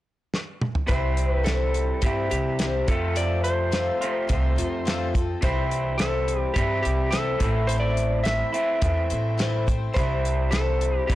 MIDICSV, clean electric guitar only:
0, 0, Header, 1, 2, 480
1, 0, Start_track
1, 0, Key_signature, 0, "major"
1, 0, Tempo, 567108
1, 750, Time_signature, 4, 2, 24, 8
1, 9437, End_track
2, 0, Start_track
2, 0, Title_t, "Clean electric guitar"
2, 0, Program_c, 0, 27
2, 733, Note_on_c, 0, 48, 81
2, 749, Note_on_c, 0, 52, 76
2, 759, Note_on_c, 0, 55, 84
2, 764, Note_on_c, 0, 60, 86
2, 770, Note_on_c, 0, 64, 80
2, 1689, Note_off_c, 0, 48, 0
2, 1697, Note_off_c, 0, 52, 0
2, 1702, Note_off_c, 0, 55, 0
2, 1707, Note_off_c, 0, 64, 0
2, 1710, Note_on_c, 0, 48, 64
2, 1717, Note_on_c, 0, 52, 57
2, 1724, Note_on_c, 0, 55, 64
2, 1733, Note_off_c, 0, 60, 0
2, 1736, Note_on_c, 0, 60, 75
2, 1738, Note_on_c, 0, 64, 80
2, 2417, Note_off_c, 0, 48, 0
2, 2421, Note_off_c, 0, 52, 0
2, 2424, Note_off_c, 0, 55, 0
2, 2431, Note_off_c, 0, 64, 0
2, 2437, Note_on_c, 0, 41, 80
2, 2447, Note_on_c, 0, 48, 89
2, 2453, Note_on_c, 0, 53, 82
2, 2455, Note_on_c, 0, 57, 91
2, 2463, Note_off_c, 0, 60, 0
2, 2466, Note_on_c, 0, 60, 82
2, 2466, Note_on_c, 0, 65, 98
2, 3381, Note_off_c, 0, 41, 0
2, 3385, Note_off_c, 0, 65, 0
2, 3386, Note_off_c, 0, 48, 0
2, 3389, Note_off_c, 0, 53, 0
2, 3390, Note_off_c, 0, 57, 0
2, 3395, Note_on_c, 0, 65, 78
2, 3399, Note_off_c, 0, 60, 0
2, 3403, Note_on_c, 0, 60, 75
2, 3411, Note_on_c, 0, 57, 85
2, 3417, Note_on_c, 0, 53, 83
2, 3420, Note_on_c, 0, 48, 71
2, 3425, Note_on_c, 0, 41, 67
2, 4340, Note_off_c, 0, 65, 0
2, 4348, Note_off_c, 0, 57, 0
2, 4351, Note_off_c, 0, 53, 0
2, 4352, Note_off_c, 0, 48, 0
2, 4355, Note_off_c, 0, 41, 0
2, 4580, Note_on_c, 0, 48, 72
2, 4590, Note_on_c, 0, 52, 84
2, 4604, Note_off_c, 0, 60, 0
2, 4604, Note_on_c, 0, 55, 77
2, 4608, Note_on_c, 0, 60, 93
2, 4612, Note_on_c, 0, 64, 95
2, 5532, Note_off_c, 0, 48, 0
2, 5544, Note_off_c, 0, 55, 0
2, 5544, Note_on_c, 0, 48, 61
2, 5552, Note_off_c, 0, 52, 0
2, 5556, Note_on_c, 0, 52, 67
2, 5564, Note_on_c, 0, 55, 77
2, 5567, Note_off_c, 0, 60, 0
2, 5571, Note_on_c, 0, 60, 74
2, 5576, Note_off_c, 0, 64, 0
2, 5580, Note_on_c, 0, 64, 75
2, 6249, Note_off_c, 0, 48, 0
2, 6252, Note_on_c, 0, 45, 81
2, 6255, Note_off_c, 0, 52, 0
2, 6258, Note_on_c, 0, 52, 88
2, 6264, Note_off_c, 0, 55, 0
2, 6272, Note_off_c, 0, 60, 0
2, 6272, Note_on_c, 0, 57, 94
2, 6276, Note_on_c, 0, 60, 88
2, 6280, Note_off_c, 0, 64, 0
2, 6284, Note_on_c, 0, 64, 89
2, 7207, Note_off_c, 0, 45, 0
2, 7211, Note_off_c, 0, 64, 0
2, 7215, Note_on_c, 0, 64, 83
2, 7217, Note_off_c, 0, 57, 0
2, 7225, Note_off_c, 0, 60, 0
2, 7228, Note_on_c, 0, 60, 86
2, 7238, Note_on_c, 0, 57, 79
2, 7242, Note_off_c, 0, 52, 0
2, 7245, Note_on_c, 0, 52, 74
2, 7252, Note_on_c, 0, 45, 67
2, 8168, Note_off_c, 0, 64, 0
2, 8180, Note_off_c, 0, 57, 0
2, 8183, Note_off_c, 0, 52, 0
2, 8187, Note_off_c, 0, 45, 0
2, 8416, Note_on_c, 0, 48, 83
2, 8423, Note_on_c, 0, 52, 77
2, 8436, Note_on_c, 0, 55, 75
2, 8437, Note_off_c, 0, 60, 0
2, 8441, Note_on_c, 0, 60, 77
2, 8449, Note_on_c, 0, 64, 88
2, 9368, Note_off_c, 0, 48, 0
2, 9372, Note_off_c, 0, 52, 0
2, 9378, Note_off_c, 0, 55, 0
2, 9379, Note_on_c, 0, 48, 72
2, 9384, Note_off_c, 0, 64, 0
2, 9390, Note_on_c, 0, 52, 61
2, 9398, Note_on_c, 0, 55, 70
2, 9402, Note_off_c, 0, 60, 0
2, 9405, Note_on_c, 0, 60, 67
2, 9437, Note_off_c, 0, 48, 0
2, 9437, Note_off_c, 0, 52, 0
2, 9437, Note_off_c, 0, 55, 0
2, 9437, Note_off_c, 0, 60, 0
2, 9437, End_track
0, 0, End_of_file